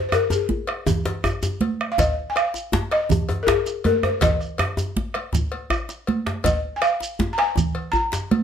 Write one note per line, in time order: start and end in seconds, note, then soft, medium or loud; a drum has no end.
0.09 0.13 C5 medium
0.09 bombo rim medium
0.09 cowbell soft
0.09 djembe slap soft
0.09 djembe tone medium
0.13 0.32 A#4 medium
0.13 shekere soft
0.30 0.83 G#4 medium
0.30 djembe slap medium
0.30 djembe tone medium
0.30 shekere soft
0.49 high conga medium
0.49 djembe bass medium
0.67 bombo rim medium
0.67 cowbell medium
0.67 djembe slap soft
0.87 bombo rim soft
0.87 bombo low medium
0.87 djembe slap soft
0.87 djembe tone loud
0.87 djembe tone medium
0.87 low conga medium
0.87 shekere medium
1.05 cowbell soft
1.05 djembe slap soft
1.05 djembe slap medium
1.24 bombo rim medium
1.24 djembe tone medium
1.24 djembe bass medium
1.24 shekere soft
1.43 bombo rim soft
1.43 djembe slap medium
1.43 djembe tone medium
1.43 shekere soft
1.61 cowbell soft
1.61 high conga medium
1.81 bombo rim medium
1.92 1.99 F5 medium
1.98 2.30 D#5 loud
1.98 bombo low loud
1.98 cowbell medium
1.98 djembe slap soft
1.98 djembe tone medium
1.98 djembe bass medium
1.98 low conga medium
1.98 shekere medium
2.30 2.36 G#5 medium
2.36 2.93 F5 medium
2.36 bombo rim loud
2.36 cowbell soft
2.36 djembe slap soft
2.36 shekere soft
2.54 djembe slap medium
2.54 shekere soft
2.72 djembe slap loud
2.72 high conga medium
2.72 djembe bass medium
2.91 3.42 D#5 loud
2.91 bombo rim medium
2.91 cowbell soft
2.91 djembe slap soft
3.09 bombo rim soft
3.09 bombo low loud
3.09 djembe slap soft
3.09 djembe tone medium
3.09 low conga medium
3.09 shekere soft
3.12 djembe tone medium
3.29 cowbell soft
3.29 djembe slap soft
3.29 djembe tone medium
3.43 3.82 G#4 medium
3.43 3.49 A#4 medium
3.47 bombo rim loud
3.47 djembe slap loud
3.47 djembe bass medium
3.47 shekere soft
3.66 bombo rim soft
3.66 djembe slap medium
3.66 shekere soft
3.84 4.04 A#4 medium
3.84 cowbell soft
3.84 high conga medium
3.84 djembe tone medium
4.03 4.22 C5 medium
4.03 bombo rim medium
4.03 djembe tone medium
4.21 5.30 D#5 medium
4.21 bombo low loud
4.21 cowbell medium
4.21 djembe slap loud
4.21 djembe slap soft
4.21 djembe tone medium
4.21 low conga medium
4.21 djembe bass medium
4.21 shekere soft
4.41 bombo rim soft
4.41 djembe slap soft
4.41 shekere soft
4.58 bombo rim loud
4.58 cowbell soft
4.58 djembe tone medium
4.77 djembe slap soft
4.77 djembe tone medium
4.77 shekere soft
4.96 bombo rim soft
4.96 djembe slap soft
4.96 high conga medium
4.96 djembe bass medium
5.14 bombo rim medium
5.14 cowbell medium
5.14 djembe slap soft
5.14 high conga soft
5.33 bombo low loud
5.33 djembe tone medium
5.33 low conga medium
5.33 shekere soft
5.52 cowbell soft
5.52 high conga soft
5.70 bombo rim medium
5.70 djembe bass medium
5.70 shekere soft
5.89 bombo rim soft
5.89 djembe slap medium
5.89 shekere soft
6.07 cowbell soft
6.07 djembe slap soft
6.07 high conga medium
6.26 bombo rim medium
6.26 djembe slap medium
6.44 6.76 D#5 medium
6.44 bombo low loud
6.44 cowbell medium
6.44 djembe slap soft
6.44 djembe tone medium
6.44 djembe bass medium
6.44 low conga medium
6.44 shekere medium
6.76 6.83 G#5 medium
6.82 7.33 F5 medium
6.82 bombo rim loud
6.82 cowbell medium
6.82 djembe slap soft
6.82 shekere soft
7.00 djembe slap medium
7.00 shekere soft
7.19 djembe slap medium
7.19 high conga medium
7.19 djembe bass medium
7.33 7.39 A#5 medium
7.38 7.96 G#5 loud
7.38 bombo rim medium
7.38 cowbell medium
7.38 djembe slap soft
7.56 bombo rim soft
7.56 bombo low loud
7.56 djembe slap soft
7.56 djembe tone medium
7.56 low conga medium
7.56 shekere medium
7.75 cowbell soft
7.75 djembe slap soft
7.92 8.43 A#5 loud
7.92 djembe bass medium
7.92 shekere soft
8.12 bombo rim soft
8.12 djembe slap medium
8.12 shekere soft
8.31 cowbell soft
8.31 high conga medium